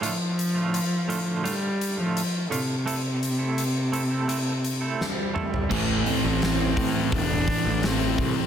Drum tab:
CC |----------------|----------------|x---------------|
HH |x-x-x-x-x-x-x-x-|x-x-x-x-x-x-----|--o-o-o-o-o-o-o-|
SD |----------------|------------o---|----o-------o---|
T2 |----------------|--------------o-|----------------|
FT |----------------|---------------o|----------------|
BD |----------------|----------------|o-----o-o-o---o-|